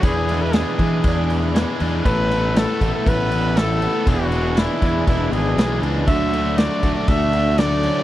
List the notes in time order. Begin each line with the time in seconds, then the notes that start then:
0.02 E2 E3 B3 D4 G#4 E5 B5 D6, kick, crash
0.27 G#3 B3 D4 G#4, crash
0.42 B4
0.53 E3 B3 D4 G#4, snare, crash
0.78 E3 G#3 B3 D4 G#4, kick, crash
1.04 E2 D4, kick, crash
1.30 E3, crash
1.54 E3 G#3 B3 D4 G#4, snare, crash
1.80 E2 B3 D4 G#4, crash
2.05 A1 A2 A3 B3 E4 A4 B4 E6, kick, crash
2.31 A3 B3 E4 A4, crash
2.56 A3 B3 E4 A4, snare, crash
2.81 A1 A3 B3 E4 A4, kick, crash
2.94 A4
3.06 A1 B3 B4, kick, crash
3.32 E3, crash
3.56 A3 B3 E4 A4, snare, crash
3.82 B3 E4 A4, crash
4.06 E1 E2 E3 B3 D4 F#4 G#4 D6, kick, crash
4.32 G#3 B3 D4 G#4, crash
4.57 E3 B3 D4 E4 G#4, snare, crash
4.82 E2 G#3 B3 D4 G#4, kick, crash
5.07 E1 D4 E4, kick, crash
5.31 G#1 E3 G#4, crash
5.57 B1 E3 G#3 B3 D4 G#4, snare, crash
5.82 C#2 B3 D4 G#4, crash
6.07 D2 D3 F#3 A3 D4 F#4 A4 E5 F#5 C#6, kick, crash
6.32 A3 D4 F#4, crash
6.58 F#3 A3 D4 F#4 D5, snare, crash
6.82 D2 A3 D4 F#4, kick, crash
6.96 D5
7.08 D2 E5, kick, crash
7.33 D3, crash
7.58 D3 F#3 A3 D4 F#4 D5, snare, crash
7.83 A3 C#4 D4 F#4, crash